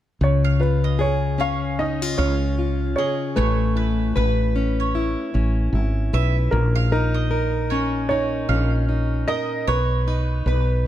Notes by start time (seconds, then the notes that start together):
0.21 C#2 C#3 C#5
0.45 F5
0.60 F4 B4
0.84 D#5
0.99 G#4 C#5
1.38 C#4 C#5 F5
1.79 D#4 D#5
2.02 F4
2.18 C#2 C#4 C#5 F5
2.59 F4
2.96 G#4 C#5 D#5
3.36 A1 A3 B4 C#5
3.76 E4 B4
4.16 A1 B4
4.56 C#4
4.80 C#5
4.95 E4
5.34 A1 C#4
5.73 G#1 E4
6.13 B1 B4 E5
6.51 A#1 A#2 A#4
6.75 F5
6.92 D#4 A#4
7.14 D#5
7.31 A#4
7.70 C#4 C#5
8.09 D#4 C#5
8.49 A#1 C#4 F5
8.89 D#4
9.28 A#4 D#5
9.67 B1 B4 C#5
10.07 D#4 B4
10.46 B1 B4